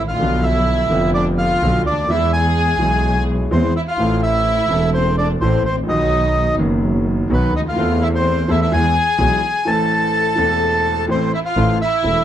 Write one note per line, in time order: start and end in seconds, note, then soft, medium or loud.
0.00 0.09 G#1 soft
0.00 0.20 A1 soft
0.08 0.15 A1 soft
0.08 0.42 F4 medium
0.08 0.45 F5 medium
0.16 0.21 A#1 medium
0.16 0.87 D3 medium
0.20 0.88 B1 medium
0.20 0.88 B2 medium
0.20 0.88 F3 medium
0.20 0.88 B3 soft
0.20 0.89 D4 medium
0.43 1.11 E4 medium
0.43 1.11 E5 medium
0.90 1.59 F1 medium
0.90 1.59 F2 medium
0.90 1.58 D3 medium
0.90 1.58 F3 medium
0.90 1.59 B3 medium
0.94 1.60 F4 medium
1.14 1.26 D4 medium
1.14 1.25 D5 medium
1.38 1.83 F4 medium
1.38 1.82 F5 medium
1.62 1.82 B1 medium
1.62 1.82 B2 medium
1.62 1.82 D3 medium
1.62 1.82 F3 medium
1.62 1.82 B3 medium
1.62 1.82 F4 medium
1.85 2.08 D2 soft
1.85 2.09 D4 medium
1.85 2.10 D5 medium
1.92 1.98 C#2 soft
1.98 2.04 D2 soft
2.04 2.10 D#2 medium
2.08 2.76 E2 medium
2.08 2.77 E2 medium
2.08 2.10 E3 medium
2.08 2.77 E3 medium
2.08 2.77 G#3 medium
2.08 2.78 B3 medium
2.08 2.32 E4 medium
2.08 2.32 E5 medium
2.12 2.78 G#4 medium
2.33 3.25 G#4 medium
2.33 3.24 G#5 medium
2.79 3.48 B1 medium
2.79 3.48 B2 medium
2.79 3.47 E3 medium
2.79 3.48 G#3 medium
2.79 3.49 B3 soft
2.84 3.50 G#4 medium
3.51 3.71 E2 medium
3.51 3.71 E3 medium
3.51 3.72 G#3 medium
3.51 3.71 B3 medium
3.51 3.74 C4 medium
3.51 3.72 G#4 medium
3.51 3.74 C5 medium
3.77 3.82 E4 medium
3.77 3.82 E5 medium
3.88 4.21 F4 medium
3.88 4.21 F5 medium
3.98 4.67 A1 medium
3.98 4.67 A2 medium
3.98 4.66 E3 medium
3.98 4.66 A3 medium
3.98 4.67 C4 soft
3.98 4.68 A4 medium
4.23 4.91 E4 medium
4.23 4.90 E5 medium
4.68 5.38 E1 medium
4.68 5.38 E2 medium
4.68 5.37 E3 medium
4.68 5.37 A3 soft
4.68 5.38 C4 medium
4.73 5.39 A4 medium
4.94 5.17 C4 medium
4.94 5.16 C5 medium
5.18 5.30 D4 medium
5.18 5.28 D5 medium
5.41 5.61 A1 medium
5.41 5.61 A2 medium
5.41 5.61 E3 medium
5.41 5.61 A3 medium
5.41 5.61 C4 medium
5.41 5.64 C4 medium
5.41 5.62 A4 medium
5.41 5.63 C5 medium
5.65 5.88 A1 medium
5.65 5.77 C4 medium
5.65 5.76 C5 medium
5.72 5.77 G#1 soft
5.77 5.83 A1 soft
5.83 5.89 A#1 medium
5.83 6.55 D#3 medium
5.88 6.56 B1 medium
5.88 6.56 B2 medium
5.88 6.56 F#3 medium
5.88 6.56 B3 medium
5.88 6.56 D#4 medium
5.88 6.57 F#4 medium
5.88 6.55 D#5 medium
6.57 7.27 F#1 medium
6.57 7.27 F#2 medium
6.57 7.25 D#3 medium
6.57 7.26 F#3 soft
6.57 7.27 B3 medium
6.62 7.28 F#4 medium
7.30 7.50 B1 medium
7.30 7.50 B2 medium
7.30 7.50 D#3 medium
7.30 7.50 F#3 medium
7.30 7.50 B3 medium
7.30 7.53 B3 medium
7.30 7.50 F#4 medium
7.30 7.54 B4 medium
7.54 7.77 D2 medium
7.54 7.61 D#4 medium
7.54 7.61 D#5 medium
7.60 7.66 C#2 soft
7.66 7.72 D2 soft
7.66 7.99 F4 medium
7.66 8.04 F5 medium
7.72 7.78 D#2 medium
7.72 8.45 E3 medium
7.77 8.45 E2 medium
7.77 8.45 A3 medium
7.77 8.45 C4 medium
7.77 8.46 A4 medium
8.02 8.07 E4 medium
8.02 8.08 E5 medium
8.14 8.46 C4 medium
8.14 8.50 C5 medium
8.48 8.68 E2 medium
8.48 8.69 E2 medium
8.48 8.68 E3 medium
8.48 8.68 A3 medium
8.48 8.68 C4 medium
8.48 8.60 E4 medium
8.48 8.68 A4 medium
8.48 8.60 E5 medium
8.62 8.72 E4 medium
8.62 8.73 E5 medium
8.71 8.92 E2 medium
8.71 8.92 E3 medium
8.71 8.91 G#3 medium
8.71 8.92 B3 medium
8.71 9.63 G#4 medium
8.71 8.92 G#4 medium
8.71 9.70 G#5 medium
9.18 9.38 B1 medium
9.18 9.39 B1 medium
9.18 9.39 B2 medium
9.18 9.39 E3 medium
9.18 9.39 G#3 medium
9.18 9.39 B3 medium
9.18 9.39 G#4 medium
9.65 10.34 A1 medium
9.65 10.34 A2 medium
9.65 10.33 E3 medium
9.65 10.34 A3 medium
9.65 10.34 C4 soft
9.65 11.05 A4 medium
9.65 10.35 A4 medium
9.65 11.05 A5 medium
10.36 11.05 E1 medium
10.36 11.06 E2 medium
10.36 11.04 E3 medium
10.36 11.05 A3 medium
10.36 11.06 C4 soft
10.36 11.06 A4 medium
11.08 11.29 A1 medium
11.08 11.29 A2 medium
11.08 11.29 E3 medium
11.08 11.29 A3 medium
11.08 11.29 C4 medium
11.08 11.32 C4 medium
11.08 11.29 A4 medium
11.08 11.32 C5 medium
11.33 11.39 E4 medium
11.33 11.40 E5 medium
11.45 11.78 F4 medium
11.45 11.78 F5 medium
11.57 11.77 A1 medium
11.57 11.77 A2 medium
11.57 11.77 E3 medium
11.57 11.77 A3 soft
11.57 11.77 C4 medium
11.57 11.77 A4 medium
11.81 12.24 E4 medium
11.81 12.24 E5 medium
12.03 12.24 E1 medium
12.03 12.24 E1 soft
12.03 12.24 E2 soft
12.03 12.23 E3 soft
12.03 12.24 A3 soft
12.03 12.24 C4 soft
12.03 12.24 A4 soft